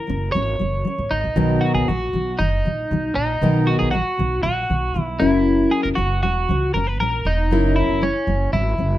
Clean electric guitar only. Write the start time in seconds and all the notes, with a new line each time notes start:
Already playing: A#4
0.32 C#5
1.11 D#4
1.61 F#4
1.75 G#4
1.88 F#4
2.39 D#4
3.15 D#4
3.67 F#4
3.79 G#4
3.91 F#4
4.43 F#4
5.01 E4
5.20 E4
5.71 G#4
5.83 A#4
5.95 F#4
6.23 F#4
6.74 A#4
6.87 B4
7.00 A#4
7.27 D#4
7.76 E4
8.03 C#4
8.53 E4